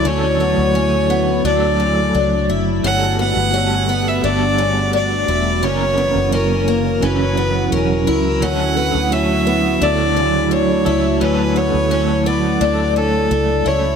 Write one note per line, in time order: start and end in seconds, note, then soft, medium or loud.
0.00 3.53 D3 medium
0.00 2.80 F#3 medium
0.00 5.60 A3 medium
0.00 2.81 E4 medium
0.00 5.59 F#4 medium
0.05 0.55 D2 medium
0.05 1.45 F#3 medium
0.05 1.47 A3 medium
0.05 0.40 C#4 loud
0.05 1.47 C#4 medium
0.05 1.45 C#5 loud
0.10 1.50 A4 medium
0.40 0.75 B3 medium
0.58 1.41 D2 loud
0.75 1.10 C#4 medium
1.10 1.44 B3 medium
1.45 2.11 D2 medium
1.45 2.83 F#3 medium
1.45 2.84 A3 medium
1.45 1.80 D4 loud
1.45 2.46 D5 medium
1.50 2.86 A4 medium
1.80 2.15 C#3 medium
2.15 2.48 C#2 medium
2.15 2.50 D4 medium
2.49 2.83 F#1 loud
2.49 2.84 E4 medium
2.83 3.34 G1 loud
2.83 3.51 G3 medium
2.83 5.61 G3 medium
2.83 3.53 B3 medium
2.83 5.61 B3 medium
2.83 3.19 C#4 loud
2.83 3.56 F#4 medium
2.83 3.55 A4 medium
2.83 3.18 F#5 loud
3.19 3.53 B3 medium
3.19 4.10 F#5 loud
3.37 4.20 G1 loud
3.53 4.20 G3 medium
3.53 4.23 B3 medium
3.53 3.89 C#4 medium
3.53 4.26 F#4 medium
3.57 4.26 A4 medium
3.89 4.23 B3 medium
4.08 4.27 E5 loud
4.22 5.25 G1 loud
4.22 5.62 G3 medium
4.22 5.64 B3 medium
4.22 4.59 D4 medium
4.22 4.94 D5 loud
4.26 5.67 F#4 medium
4.26 5.66 A4 medium
4.58 4.93 C#3 medium
4.93 5.28 D4 medium
4.93 5.66 D5 loud
5.28 5.63 E1 medium
5.28 5.63 E4 medium
5.61 6.13 F#1 loud
5.61 6.99 F#2 medium
5.61 7.01 C#3 medium
5.61 8.40 E3 medium
5.61 7.03 E3 medium
5.61 8.40 F#3 medium
5.61 5.97 C#4 medium
5.61 13.96 E4 medium
5.61 13.96 F#4 medium
5.61 6.36 C#5 loud
5.66 7.04 A#3 medium
5.66 7.06 C#4 medium
5.66 7.06 A#4 medium
5.98 6.32 B3 medium
6.16 6.99 F#1 medium
6.32 6.68 C#4 medium
6.32 7.06 A#4 medium
6.68 7.03 A#3 medium
7.01 7.69 F#1 medium
7.01 8.41 F#2 medium
7.01 8.40 C#3 medium
7.01 8.42 E3 medium
7.01 7.37 C#4 medium
7.01 7.73 B4 loud
7.06 8.45 C#4 medium
7.37 7.72 B3 medium
7.72 8.06 E1 medium
7.72 8.07 C#4 medium
7.72 8.45 A#4 medium
8.07 8.41 C#2 loud
8.07 8.42 E4 medium
8.40 8.92 D2 loud
8.40 9.81 D3 medium
8.40 13.96 F#3 medium
8.40 9.82 F#3 medium
8.40 13.96 A3 medium
8.40 9.83 A3 medium
8.40 8.77 C#4 loud
8.40 9.15 F#5 loud
8.46 9.84 C#4 medium
8.46 9.84 A4 medium
8.77 9.12 B3 medium
8.95 9.78 D2 loud
9.12 9.46 C#4 medium
9.12 9.84 E5 loud
9.47 9.81 B3 medium
9.81 10.83 D2 loud
9.81 10.91 D3 medium
9.81 11.21 F#3 loud
9.81 10.90 A3 medium
9.81 10.17 D4 loud
9.81 10.85 A4 loud
9.81 10.54 D5 loud
10.17 10.52 C#3 medium
10.51 10.86 D4 medium
10.51 11.22 C#5 medium
10.85 11.20 C#2 loud
10.85 11.22 C#4 soft
10.85 11.21 E4 medium
10.85 11.21 A4 medium
10.90 11.21 A3 soft
11.20 11.71 D2 loud
11.20 13.70 D3 medium
11.20 11.90 F#3 medium
11.20 11.91 A3 medium
11.20 11.55 C#4 loud
11.20 13.67 C#4 medium
11.20 11.94 A4 medium
11.20 11.59 B4 loud
11.56 11.91 B3 medium
11.56 12.29 C#5 loud
11.74 12.57 D2 loud
11.90 12.61 F#3 medium
11.90 12.62 A3 medium
11.90 12.26 C#4 medium
11.94 12.63 A4 medium
12.26 12.61 B3 medium
12.26 12.96 D5 medium
12.61 13.27 D2 loud
12.61 13.96 F#3 medium
12.61 13.69 A3 medium
12.61 12.96 D4 medium
12.61 13.64 A4 medium
12.96 13.31 C#4 medium
12.96 13.69 A4 loud
13.31 13.64 C#2 loud
13.31 13.66 D4 medium
13.65 13.96 C#2 loud
13.65 13.96 C#4 medium
13.65 13.96 E4 medium
13.65 13.96 A4 medium
13.65 13.96 C#5 loud
13.69 13.96 A3 medium